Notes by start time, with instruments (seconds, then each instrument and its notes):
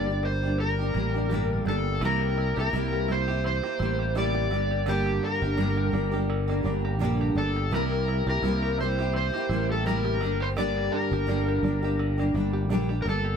Already playing: fretless electric bass G1, five-string banjo D3 A#3 D4, electric slide guitar D5
0.07 nylon-string guitar G3 A#3 D4 G4
0.23 five-string banjo A#3, electric slide guitar C5
0.43 nylon-string guitar G3 A#3 D4 G4
0.58 five-string banjo G4, electric slide guitar A#4
0.78 nylon-string guitar G3 A#3 D4 G4
0.94 fretless electric bass A1, nylon-string guitar G3 A#3 D4 G4, five-string banjo A#3
1.14 nylon-string guitar G3 A#3 D4 G4
1.29 nylon-string guitar G2 D3 G3 A#3 D4 G4, five-string banjo G4
1.65 fretless electric bass G1, nylon-string guitar G3 A#3 D4 G4, five-string banjo D4, electric slide guitar A4
2.01 fretless electric bass C2, nylon-string guitar C3 G3 A#3 E4 G4, five-string banjo E3, electric slide guitar A#4
2.21 five-string banjo A#3
2.38 five-string banjo E4
2.56 fretless electric bass C2, nylon-string guitar A#3 E4 G4, five-string banjo G4, electric slide guitar A#4
2.73 fretless electric bass C2, nylon-string guitar C3 G3 A#3 E4 G4, five-string banjo E4
2.93 five-string banjo G4
3.08 nylon-string guitar G3 A#3 E4 G4, five-string banjo E4, electric slide guitar C5
3.28 nylon-string guitar A#3 E4 G4, five-string banjo G4
3.44 five-string banjo E3, electric slide guitar C5
3.63 five-string banjo A#3, nylon-string guitar A#3 E4 G4
3.79 fretless electric bass A1, nylon-string guitar G3 A#3 E4 G4, five-string banjo E4
3.99 five-string banjo G4
4.15 nylon-string guitar C3 G3 A#3 E4 G4, five-string banjo E4, electric slide guitar D5
4.35 five-string banjo G4
4.51 fretless electric bass G1, five-string banjo D3, nylon-string guitar G3 A#3 D4 G4
4.71 five-string banjo G4
4.86 nylon-string guitar G2 D3 G3 A#3 D4 G4, five-string banjo D3, electric slide guitar G4
5.06 five-string banjo A#3
5.23 five-string banjo D4, electric slide guitar A#4
5.42 fretless electric bass G1, nylon-string guitar G3 A#3 D4 G4, five-string banjo G4
5.57 nylon-string guitar G2 D3 G3 A#3 D4 G4, five-string banjo D4
5.77 five-string banjo G4
5.92 fretless electric bass G1, nylon-string guitar G3 A#3 D4 G4, five-string banjo D4
6.11 nylon-string guitar G3 A#3 D4 G4, five-string banjo G4
6.30 five-string banjo D3
6.48 nylon-string guitar G3 A#3 D4 G4, five-string banjo A#3
6.63 fretless electric bass G1, nylon-string guitar G3 A#3 D4 G4, five-string banjo D4
6.85 five-string banjo G4
6.99 fretless electric bass A#1, nylon-string guitar G2 D3 G3 A#3 D4 G4, five-string banjo D4
7.21 five-string banjo G4
7.35 fretless electric bass G1, nylon-string guitar G3 A#3 D4 G4, five-string banjo D4, electric slide guitar A4
7.56 five-string banjo G4
7.71 fretless electric bass C2, nylon-string guitar C3 G3 A#3 E4 G4, five-string banjo E3, electric slide guitar A#4
7.92 five-string banjo A#3
8.08 five-string banjo E4
8.27 fretless electric bass C2, nylon-string guitar A#3 E4 G4, five-string banjo G4, electric slide guitar A#4
8.42 fretless electric bass C2, nylon-string guitar C3 G3 A#3 E4 G4, five-string banjo E4
8.63 five-string banjo G4
8.78 nylon-string guitar G3 A#3 E4, five-string banjo E4, electric slide guitar C5
8.82 nylon-string guitar G4
8.99 nylon-string guitar A#3 E4 G4, five-string banjo G4
9.13 five-string banjo E3, electric slide guitar C5
9.34 five-string banjo A#3, nylon-string guitar A#3 E4 G4
9.49 fretless electric bass A1, nylon-string guitar G3 A#3 E4, five-string banjo E4
9.53 nylon-string guitar G4
9.69 five-string banjo G4, electric slide guitar A4
9.86 nylon-string guitar C3 G3 A#3 E4 G4, five-string banjo E4, electric slide guitar A#4
10.05 five-string banjo G4
10.21 fretless electric bass G1, five-string banjo D3, nylon-string guitar G3 A#3 D4 G4
10.40 five-string banjo G4, electric slide guitar C5
10.56 nylon-string guitar G2 D3 G3 A#3 D4 G4, five-string banjo D3, electric slide guitar D5
10.77 five-string banjo A#3
10.92 five-string banjo D4, electric slide guitar A#4
11.11 fretless electric bass G1, nylon-string guitar G3 A#3 D4 G4, five-string banjo G4
11.27 nylon-string guitar G2 D3 G3 A#3 D4 G4, five-string banjo D4
11.48 five-string banjo G4
11.63 fretless electric bass G1, nylon-string guitar G3 A#3 D4 G4, five-string banjo D4
11.82 nylon-string guitar G3 A#3 D4 G4, five-string banjo G4
11.99 five-string banjo D3
12.18 nylon-string guitar G3 A#3 D4 G4, five-string banjo A#3
12.34 fretless electric bass G1, nylon-string guitar G3 A#3 D4 G4, five-string banjo D4
12.53 five-string banjo G4
12.69 fretless electric bass A#1, nylon-string guitar G2 D3 G3 A#3 D4 G4, five-string banjo D4
12.89 nylon-string guitar G3 A#3 D4 G4, five-string banjo G4
13.02 fretless electric bass G1, nylon-string guitar G3, five-string banjo D4, electric slide guitar A#4
13.07 nylon-string guitar A#3 D4 G4, electric slide guitar A4
13.24 five-string banjo G4